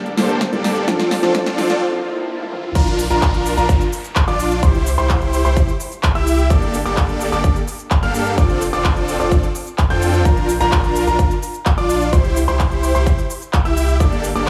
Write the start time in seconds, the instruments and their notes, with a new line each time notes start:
Already playing: sub bass G1, analog synth pad D3 A#3 G4 A4, riser
0.06 closed hi-hat
0.17 sub bass G1, felt piano G2 G3 A#3 D4 A#4, supersaw synth A#3 D4 G4 A4 C5, snare, open hi-hat
0.29 closed hi-hat
0.41 kick, snare, closed hi-hat
0.52 felt piano G2 G3 A#3 D4 A4, sub bass G2, supersaw synth A#3 D4 G4 A4 D5, closed hi-hat
0.64 snare, open hi-hat
0.76 closed hi-hat
0.87 sub bass F1, felt piano F3 C4 D4 A4, supersaw synth C4 D4 F4 A4 D5, analog synth pad C4 F4, kick, snare, closed hi-hat
1.00 snare, closed hi-hat
1.11 snare, open hi-hat
1.22 sub bass F1, felt piano F3 C4 D4 A4, supersaw synth C4 D4 F4 A4 D5, snare, closed hi-hat
1.35 kick, snare, closed hi-hat
1.46 snare, closed hi-hat
1.58 felt piano F3 C4 D4 A4, snare, open hi-hat
1.70 sub bass F1, supersaw synth C4 D4 F4 A4 D5, snare
1.82 swell
2.40 high tom
2.52 mid tom
2.64 mid tom
2.75 sub bass A#1, supersaw synth D4 F4 A#4, grand piano A#5, kick, closed hi-hat, crash, downlifter, cabasa
2.87 closed hi-hat
2.99 open hi-hat, cabasa
3.10 sub bass A#1, supersaw synth D4 F4 A#4, grand piano A#5, closed hi-hat, cabasa
3.22 kick, clap, closed hi-hat, cabasa
3.34 closed hi-hat
3.46 open hi-hat, cabasa
3.57 sub bass A#1, supersaw synth D4 F4 A#4, grand piano A#5, closed hi-hat, cabasa
3.69 kick, closed hi-hat, cabasa
3.81 closed hi-hat, cabasa
3.93 open hi-hat, cabasa
4.04 closed hi-hat, cabasa
4.16 kick, clap, closed hi-hat, cabasa
4.28 sub bass A#1, supersaw synth D4 F4 D5, grand piano D6, closed hi-hat
4.39 open hi-hat, cabasa
4.51 closed hi-hat, cabasa
4.63 sub bass C2, supersaw synth E4 G4 C5, grand piano C6, kick, closed hi-hat, cabasa
4.75 closed hi-hat
4.86 open hi-hat, cabasa
4.98 sub bass C2, supersaw synth E4 G4 C5, grand piano C6, closed hi-hat, cabasa
5.09 kick, clap, closed hi-hat, cabasa
5.21 closed hi-hat
5.33 open hi-hat, cabasa
5.45 sub bass C2, supersaw synth E4 G4 C5, grand piano C6, closed hi-hat, cabasa
5.57 kick, closed hi-hat, cabasa
5.68 closed hi-hat, cabasa
5.80 open hi-hat, cabasa
5.92 closed hi-hat, cabasa
6.03 kick, clap, closed hi-hat, cabasa
6.15 sub bass C2, supersaw synth E4 G4 E5, grand piano E6, closed hi-hat
6.27 open hi-hat, cabasa
6.39 closed hi-hat, cabasa
6.50 sub bass G1, supersaw synth A#3 D4 G4 A4 D5, grand piano D6, kick, closed hi-hat, cabasa
6.62 closed hi-hat
6.74 open hi-hat, cabasa
6.85 sub bass G1, supersaw synth A#3 D4 G4 A4 D5, grand piano D6, closed hi-hat, cabasa
6.97 kick, clap, closed hi-hat, cabasa
7.09 closed hi-hat
7.21 open hi-hat, cabasa
7.32 sub bass G1, supersaw synth A#3 D4 G4 A4 D5, grand piano D6, closed hi-hat, cabasa
7.44 kick, closed hi-hat, cabasa
7.56 closed hi-hat, cabasa
7.68 open hi-hat, cabasa
7.79 closed hi-hat, cabasa
7.91 kick, clap, closed hi-hat, cabasa
8.03 sub bass G2, supersaw synth A#3 D4 G4 A4 F5, grand piano F6, closed hi-hat
8.14 open hi-hat, cabasa
8.26 closed hi-hat, cabasa
8.38 sub bass F1, supersaw synth C4 D4 F4 A4 D5, grand piano D6, kick, closed hi-hat, cabasa
8.50 closed hi-hat
8.61 open hi-hat, cabasa
8.73 sub bass F1, supersaw synth C4 D4 F4 A4 D5, grand piano D6, closed hi-hat, cabasa
8.85 kick, clap, closed hi-hat, cabasa
8.96 closed hi-hat
9.08 open hi-hat, cabasa
9.20 sub bass F1, supersaw synth C4 D4 F4 A4 D5, grand piano D6, closed hi-hat, cabasa
9.32 kick, closed hi-hat, cabasa
9.43 closed hi-hat, cabasa
9.55 open hi-hat, cabasa
9.67 closed hi-hat, cabasa
9.78 kick, clap, closed hi-hat, cabasa
9.90 sub bass F2, supersaw synth C4 D4 F4 A4 G5, grand piano G6, closed hi-hat
10.02 open hi-hat, cabasa
10.14 closed hi-hat, cabasa
10.25 sub bass A#1, supersaw synth D4 F4 A#4, grand piano A#5, kick, closed hi-hat, cabasa
10.37 closed hi-hat
10.49 open hi-hat, cabasa
10.60 sub bass A#1, supersaw synth D4 F4 A#4, grand piano A#5, closed hi-hat, cabasa
10.72 kick, clap, closed hi-hat, cabasa
10.84 closed hi-hat
10.96 open hi-hat, cabasa
11.07 sub bass A#1, supersaw synth D4 F4 A#4, grand piano A#5, closed hi-hat, cabasa
11.19 kick, closed hi-hat, cabasa
11.31 closed hi-hat, cabasa
11.43 open hi-hat, cabasa
11.54 closed hi-hat, cabasa
11.66 kick, clap, closed hi-hat, cabasa
11.78 sub bass A#1, supersaw synth D4 F4 D5, grand piano D6, closed hi-hat
11.89 open hi-hat, cabasa
12.01 closed hi-hat, cabasa
12.13 sub bass C2, supersaw synth E4 G4 C5, grand piano C6, kick, closed hi-hat, cabasa
12.25 closed hi-hat
12.36 open hi-hat, cabasa
12.48 sub bass C2, supersaw synth E4 G4 C5, grand piano C6, closed hi-hat, cabasa
12.60 kick, clap, closed hi-hat, cabasa
12.71 closed hi-hat
12.83 open hi-hat, cabasa
12.95 sub bass C2, supersaw synth E4 G4 C5, grand piano C6, closed hi-hat, cabasa
13.07 kick, closed hi-hat, cabasa
13.18 closed hi-hat, cabasa
13.30 open hi-hat, cabasa
13.42 closed hi-hat, cabasa
13.53 kick, clap, closed hi-hat, cabasa
13.65 sub bass C2, supersaw synth E4 G4 E5, grand piano E6, closed hi-hat
13.77 open hi-hat, cabasa
13.89 closed hi-hat, cabasa
14.00 sub bass G1, supersaw synth A#3 D4 G4 A4 D5, grand piano D6, kick, closed hi-hat, cabasa
14.12 closed hi-hat
14.24 open hi-hat, cabasa
14.35 sub bass G1, supersaw synth A#3 D4 G4 A4 D5, grand piano D6, closed hi-hat, cabasa